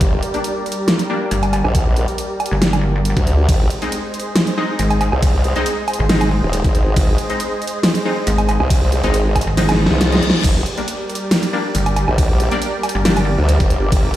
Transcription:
Already playing: G3 G4 A#4 D5
0.01 G1, kick, closed hi-hat
0.23 closed hi-hat
0.34 G3 A#3 D4, closed hi-hat
0.44 closed hi-hat
0.66 closed hi-hat
0.72 closed hi-hat
0.88 snare, closed hi-hat
0.99 closed hi-hat
1.10 G3 A#3 D4
1.31 G1, closed hi-hat
1.43 closed hi-hat, low woodblock
1.53 closed hi-hat, low woodblock
1.65 A#1, low woodblock
1.75 kick, closed hi-hat
1.96 closed hi-hat
2.08 closed hi-hat
2.18 closed hi-hat
2.40 closed hi-hat, low woodblock
2.46 closed hi-hat
2.51 G1
2.62 snare, closed hi-hat
2.73 closed hi-hat, low woodblock
3.05 closed hi-hat
3.17 D2, kick, closed hi-hat
3.27 closed hi-hat
3.49 G#1 G#3 G#4 C5 D#5, kick, closed hi-hat, ride
3.70 closed hi-hat
3.82 G#3 C4 D#4, closed hi-hat
3.92 closed hi-hat, ride
4.14 closed hi-hat
4.20 closed hi-hat
4.36 snare, closed hi-hat, ride
4.47 closed hi-hat
4.57 G#3 C4 D#4
4.79 G#1, closed hi-hat, ride
4.91 closed hi-hat, low woodblock
5.01 closed hi-hat, low woodblock
5.12 C2, low woodblock
5.22 kick, closed hi-hat, ride
5.44 closed hi-hat
5.56 G#3 C4 D#4, closed hi-hat
5.66 closed hi-hat, ride
5.88 closed hi-hat, low woodblock
5.93 closed hi-hat
5.99 G#1
6.09 G#3 C4 D#4, snare, closed hi-hat, ride
6.21 closed hi-hat, low woodblock
6.43 D#1
6.53 closed hi-hat, ride
6.64 G#1, kick, closed hi-hat
6.75 closed hi-hat
6.96 G#1, kick, closed hi-hat, ride
7.18 closed hi-hat
7.30 G#3 C4 D#4, closed hi-hat
7.40 closed hi-hat, ride
7.62 closed hi-hat
7.67 closed hi-hat
7.83 snare, closed hi-hat, ride
7.95 closed hi-hat
8.05 G#3 C4 D#4
8.27 G#1, closed hi-hat, ride
8.38 closed hi-hat, low woodblock
8.49 closed hi-hat, low woodblock
8.60 C2, low woodblock
8.70 kick, closed hi-hat, ride
8.92 closed hi-hat
9.04 G#1 G#3 C4 D#4, closed hi-hat
9.14 closed hi-hat, ride
9.36 kick, closed hi-hat, low woodblock
9.41 closed hi-hat
9.47 G#1
9.57 G#3 C4 D#4, snare, closed hi-hat, ride, reverse cymbal
9.69 snare, closed hi-hat, low woodblock
9.86 snare
9.91 C2
10.01 snare, closed hi-hat, ride
10.12 G#3 C4 D#4, snare, closed hi-hat
10.23 closed hi-hat
10.30 snare
10.44 G1 G3 G4 A#4 D5, kick, closed hi-hat, crash, ride
10.66 closed hi-hat
10.78 G3 A#3 D4, closed hi-hat
10.88 closed hi-hat, ride
11.10 closed hi-hat
11.15 closed hi-hat
11.31 snare, closed hi-hat, ride
11.43 closed hi-hat
11.53 G3 A#3 D4
11.75 G1, closed hi-hat, ride
11.86 closed hi-hat, low woodblock
11.96 closed hi-hat, low woodblock
12.08 A#1, low woodblock
12.18 kick, closed hi-hat, ride
12.40 closed hi-hat
12.51 G3 A#3 D4, closed hi-hat
12.62 closed hi-hat, ride
12.83 closed hi-hat, low woodblock
12.89 closed hi-hat
12.95 G1
13.05 G3 A#3 D4, snare, closed hi-hat, ride
13.17 closed hi-hat, low woodblock
13.38 D2
13.49 closed hi-hat, ride
13.60 G1, kick, closed hi-hat
13.70 closed hi-hat
13.92 G1, kick, closed hi-hat, ride

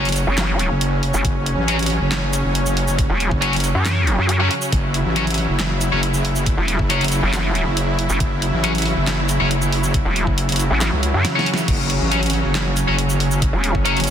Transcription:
Already playing: F#1 C#3 F#3 C#4
0.05 closed hi-hat
0.09 closed hi-hat
0.12 closed hi-hat, open hi-hat, shaker
0.27 F#1
0.38 snare, clap, closed hi-hat, shaker
0.59 closed hi-hat
0.70 F#1
0.81 closed hi-hat
1.03 open hi-hat
1.14 F#1, shaker
1.25 F#1, kick, closed hi-hat
1.46 closed hi-hat
1.57 A1
1.68 F#3 C#4 C#5, closed hi-hat
1.79 closed hi-hat
1.83 closed hi-hat
1.86 closed hi-hat, open hi-hat
2.01 F#1
2.12 snare, clap, closed hi-hat
2.33 closed hi-hat, shaker
2.44 F#1
2.55 closed hi-hat
2.66 shaker
2.77 open hi-hat
2.88 shaker
2.99 kick, closed hi-hat
3.10 E1
3.20 closed hi-hat
3.31 F#1, kick
3.42 F#3 C#4 C#5, closed hi-hat
3.53 closed hi-hat
3.56 closed hi-hat
3.60 closed hi-hat, open hi-hat, shaker
3.75 F#2
3.85 snare, clap, closed hi-hat, shaker
4.07 closed hi-hat
4.18 F#2
4.29 closed hi-hat
4.40 F#3 C#4 C#5
4.51 open hi-hat
4.62 shaker
4.72 F#1 E4, kick, closed hi-hat
4.94 closed hi-hat
5.05 A1
5.16 F#3 C#4 C#5, closed hi-hat
5.27 closed hi-hat
5.30 closed hi-hat
5.34 closed hi-hat, open hi-hat
5.49 F#1
5.59 snare, clap, closed hi-hat
5.81 closed hi-hat, shaker
5.92 F#1 F#3 C#4 C#5
6.03 closed hi-hat
6.14 shaker
6.25 open hi-hat
6.36 shaker
6.46 kick, closed hi-hat
6.57 E1
6.68 closed hi-hat
6.79 F#1, kick
6.90 F#3 C#4 C#5, closed hi-hat
7.01 closed hi-hat
7.04 closed hi-hat
7.08 closed hi-hat, open hi-hat, shaker
7.23 F#1
7.33 snare, clap, closed hi-hat, shaker
7.55 closed hi-hat
7.66 F#1
7.77 closed hi-hat
7.99 open hi-hat
8.10 F#1, shaker
8.20 F#1, kick, closed hi-hat
8.42 closed hi-hat
8.53 A1
8.63 F#3 C#4 C#5, closed hi-hat
8.75 closed hi-hat
8.78 closed hi-hat
8.82 closed hi-hat, open hi-hat
8.97 F#1
9.07 snare, clap, closed hi-hat
9.29 closed hi-hat, shaker
9.40 F#1 F#3 C#4 C#5
9.51 closed hi-hat
9.62 shaker
9.73 open hi-hat
9.84 shaker
9.94 kick, closed hi-hat
10.05 E1
10.16 closed hi-hat
10.27 F#1, kick
10.38 closed hi-hat
10.49 closed hi-hat
10.52 closed hi-hat
10.56 closed hi-hat, open hi-hat, shaker
10.71 A1
10.81 snare, clap, closed hi-hat, shaker
10.92 C#2
11.03 closed hi-hat
11.14 F#2
11.25 snare, closed hi-hat
11.35 F#3 C#4 C#5, snare
11.46 open hi-hat
11.54 snare, closed hi-hat, shaker
11.68 F#1 C#4, kick, closed hi-hat, crash
11.90 closed hi-hat
12.01 A1
12.11 F#3 C#4 C#5, closed hi-hat
12.23 closed hi-hat
12.26 closed hi-hat
12.30 closed hi-hat, open hi-hat
12.44 F#1
12.55 snare, clap, closed hi-hat
12.77 closed hi-hat, shaker
12.88 F#1 F#3 C#4 C#5
12.99 closed hi-hat
13.10 shaker
13.20 open hi-hat
13.31 shaker
13.42 kick, closed hi-hat
13.53 E1
13.64 closed hi-hat
13.75 F#1, kick
13.85 F#3 C#4 C#5, closed hi-hat
13.97 closed hi-hat
14.00 closed hi-hat
14.04 closed hi-hat, open hi-hat, shaker

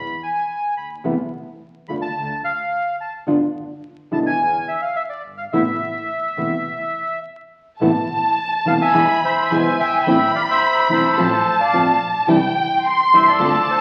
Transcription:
Already playing: E2 B5
0.23 G#5
0.77 D2 B5
1.04 E2 C3 E3 A3 B3 E4
1.88 E2 D3 A3 D4 F4 B5
2.02 A5
2.16 D2
2.44 F5
3.01 A5
3.27 D2 D3 B3 D4 F4
4.12 D2 B2 D3 G#3 B3 E4 A5
4.26 G#5
4.40 E2
4.68 E5
4.82 F5
4.96 E5
5.10 D5
5.23 G1
5.38 F5
5.52 A1 C3 E3 A3 B3 E4 E5
6.37 E1 C3 E3 A3 B3 E4
7.80 A1 C3 E3 A3 B3 E4 A5
8.65 E1 C3 E3 A3 B3 E4 F5 A5
8.81 E5 G#5
8.94 E2 B2 E3 G#3 B3 E4 B5
9.25 C5 E5
9.50 B1 B2 E3 G#3 B3 E4 G#5
9.79 G1 E5 G5
10.05 A1 E3 A3 C4 E4 B5
10.35 D5 F5
10.50 C5 E5
10.89 E1 E3 A3 C4 E4 C5
10.93 A4
11.17 A1 F3 A3 C4 F4 A5
11.60 D5 F5
11.73 A1 F3 A3 C4 F4
12.01 A#1
12.27 C2 C3 E3 G3 C4 E4 G5
12.85 C6
13.12 G1 C3 E3 G3 C4 E4 C5 E5
13.27 A4 D5
13.39 D2 D3 A3 C4 F4 A5
13.70 A4 C5

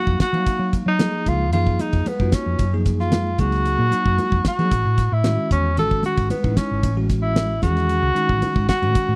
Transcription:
Already playing: F#3 A#3 D#4 F#4 F5
0.07 F2, kick
0.20 F#4, kick, snare, hi-hat pedal, ride
0.33 F#3 A#3 D#4 F5, ride
0.46 kick, hi-hat pedal, ride, muted conga
0.59 F#3
0.73 kick, hi-hat pedal, ride, muted conga
0.86 F#3 D#4
0.99 F3 A#3 D#4 G#4, snare, hi-hat pedal, ride, muted conga, high conga
1.26 C#2 F4, kick, hi-hat pedal, ride, high conga
1.52 F#2 F3 A#3 D#4 F4 G#4, hi-hat pedal, ride, muted conga, low conga
1.67 kick
1.79 D#4, hi-hat pedal, ride, high conga
1.93 F2, kick, ride
2.06 B3, muted fingered electric bass stroke, hi-hat pedal, ride, high conga
2.20 F#2 A#3 D#4 F4 F#4, kick
2.32 C#4, kick, snare, hi-hat pedal, ride
2.46 F2
2.59 F#2, kick, hi-hat pedal, ride, muted conga
2.73 F3 A#3 D#4 G#4
2.85 kick, snare, hi-hat pedal, ride
2.99 F4, snare
3.12 snare, hi-hat pedal, ride, muted conga, high conga
3.38 C#2 F#3 A#3 D#4 F#4 G#4, kick, hi-hat pedal, ride, high conga
3.52 snare, ride
3.65 hi-hat pedal, ride, muted conga
3.79 A#2
3.91 F#3 A#3 D#4 F#4, muted fingered electric bass stroke, hi-hat pedal, ride
4.06 F#2, kick
4.18 hi-hat pedal, ride, high conga
4.32 F2, kick
4.45 F#4, kick, snare, hi-hat pedal, ride
4.59 F3 F#3 A#3 D#4 G#4, snare, ride
4.71 A1, kick, hi-hat pedal, ride, muted conga
4.85 A2
4.98 kick, snare, hi-hat pedal, ride, muted conga
5.12 A2 E4
5.24 D#3 G#3 C#4 F#4, snare, hi-hat pedal, ride, muted conga, high conga
5.51 E2 C#4, kick, hi-hat pedal, ride
5.77 A1 D#3 G#3 C#4 F#4 A4, hi-hat pedal, ride, muted conga, low conga
5.91 kick
6.03 F#4, hi-hat pedal, ride, high conga
6.17 G#1, kick, ride
6.30 B3, muted fingered electric bass stroke, hi-hat pedal, ride, high conga
6.43 A1 G#3 C#4 D#4 E4, kick
6.57 C#4, kick, snare, hi-hat pedal, ride
6.71 G#1
6.83 A1, kick, hi-hat pedal, ride, muted conga
6.97 E3 G#3 C#4 F#4
7.09 kick, snare, hi-hat pedal, ride, muted conga
7.22 E4
7.36 snare, hi-hat pedal, ride, muted conga, high conga
7.62 E2 D#3 G#3 C#4 F#4 G#4, kick, hi-hat pedal, ride, high conga
7.77 snare, ride
7.89 hi-hat pedal, ride, muted conga
8.03 C#2
8.15 D#3 G#3 C#4 D#4, hi-hat pedal, ride
8.29 A1, kick
8.42 hi-hat pedal, ride, high conga
8.56 G#1, kick
8.69 F#4, muted fingered electric bass stroke, kick, snare, hi-hat pedal, ride
8.82 A2 D#3 G#3 C#4 F#4, ride
8.95 kick, hi-hat pedal, ride, muted conga
9.08 A2

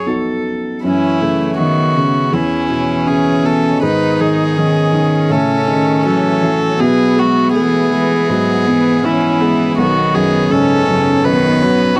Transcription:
Already playing: F#2 B3 D#4 F#4
0.06 B3 D#4 F#4 A4
0.84 F#2 E3 A3 C#4 E4 C#5 E5
1.21 C#3 A3
1.58 D#3 B3 F#4
1.94 C#3
2.32 E2 E3 B3 C#4 E4
2.69 B2
3.07 C#3 G#4
3.44 B2 A4
3.80 G#2 D#3 D#4 B4 D#5
4.20 D#3 G#4
4.57 D#3 C#4
4.93 D#3
5.30 A2 C#3 A3 A4 C#5 E5
5.67 C#3 D#3
6.05 E3 F#3 A4
6.42 E3 F#3
6.80 B2 B3 G#4 B4
7.16 G#3 F#4
7.55 E3 A3 G#4
7.91 E3 G#3
8.29 G#2 F#3 B3
8.66 E3 B3
9.03 E3 C#4 E4
9.40 G#3 B3
9.77 B1 D#3 B3 D#4 F#4 C#5
10.14 F#2 G#4
10.51 G#2 C#3 C#4 A4
10.88 F#2 C#3
11.23 B1 D#3 B3 B4
11.61 F#3 C#4
11.97 D#4 F#4

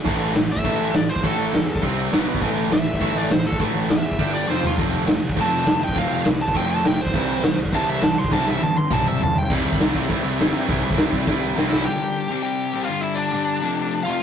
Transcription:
0.05 A1 A2 E3 A3, kick, crash
0.21 crash
0.34 A1 A2 E3, snare, crash
0.49 A1 E5, crash
0.57 kick
0.64 A1 A2 E3 A3, kick, crash
0.78 A1, crash
0.93 A1 A2 E3 D5, snare, crash
1.09 A1 C5, crash
1.16 kick
1.23 A1 A2 E3 A3 A4, kick, crash
1.38 A1, crash
1.52 E2 A2 E3, snare, crash
1.68 crash
1.76 kick
1.82 C2 C3 G3 C4, kick, crash
1.98 crash
2.11 B1 B2 F#3 B3, snare, crash
2.27 B1, crash
2.35 kick
2.42 A1 A2 E3 A3, kick, crash
2.56 crash
2.70 A1 A2 E3 E5, snare, crash
2.85 A1, crash
2.94 kick
3.00 A1 A2 E3 A3, kick, crash
3.14 A1 D5, crash
3.30 A1 A2 E3 C5, snare, crash
3.44 A1 A4, crash
3.52 kick
3.59 A1 A2 E3 A3, kick, crash
3.75 A1, crash
3.89 E2 A2 E3 E5, snare, crash
4.04 crash
4.12 kick
4.19 G1 G2 D3 G3 D4 G4, kick, crash
4.33 D5, crash
4.48 F1 F2 C3 F3 C4 F4 C5, snare
4.62 F1, floor tom
4.67 F4
4.77 F1 F2 C3 F3 A3 C4, kick, crash
4.92 crash
5.07 F1 F2 C3 F3 A3, snare, crash
5.22 F1, crash
5.30 kick
5.36 F1 F2 C3 F3 A3 C4, kick, crash
5.41 A5
5.52 F1, crash
5.66 F1 F2 C3 F3 A3, snare, crash
5.80 F1 G5, crash
5.89 kick
5.95 F1 F2 C3 F3 A3 C4 F5, kick, crash
6.10 F1 F5, crash
6.25 C2 F2 C3 F3 A3, snare, crash
6.40 A5, crash
6.48 kick
6.54 F1 F2 C3 F3 A3 C4 G5, kick, crash
6.70 A5, crash
6.83 F1 F2 C3 F3 A3 G5, snare, crash
6.99 B1 C5, crash
7.07 kick
7.14 C2 C3 E3 G3 C4, kick, crash
7.28 crash
7.43 C2 C3 E3 G3, snare, crash
7.58 C2, crash
7.65 kick
7.72 C2 C3 E3 G3 C4 A5, kick, crash
7.87 C2 E5, crash
8.02 C2 C3 E3 G3 A5, snare, crash
8.17 C2 C6, crash
8.25 kick
8.31 C2 C3 E3 G3 C4 A5, kick, snare
8.47 C2 E5, snare
8.61 G2 C3 E3 G3 A5, high tom
8.75 C6, high tom
8.90 C2 C3 E3 G3 C4 A5, kick, mid tom
9.05 E5, mid tom
9.20 C2 C3 E3 G3 A5, floor tom
9.35 C2 G5, floor tom
9.50 C2 C3 G3 C4 E4, kick, crash
9.65 C2, crash
9.72 kick
9.79 C2 C3 G3 C4 E4, snare, crash
9.95 kick, crash
10.09 C2 C3 G3 C4 E4, kick, crash
10.24 C2, crash
10.39 G1 C3 G3 C4 E4, snare, crash
10.53 G2, crash
10.68 C2 C3 G3 C4 E4, kick, crash
10.83 C2, crash
10.91 kick
10.97 C2 C3 G3 C4 E4, snare, crash
11.12 C2, kick, crash
11.27 C2 C3 G3 C4 E4, kick, snare
11.55 C2 C3 G3 C4 E4, snare
11.70 C2 E4 E5, snare
11.76 E4 E5
11.85 G2 D3 G3 G4 G5
12.29 C3 G3 C4
12.43 G4 G5
12.73 C3 G3 C4
12.85 G2 F4 F5
12.90 D3 G3
13.01 E4 E5
13.15 D4 D5
13.32 G2 D3 G3
13.61 F2 C3 F3
14.03 C3 F3 F4 F5
14.08 F2 F5
14.14 F4

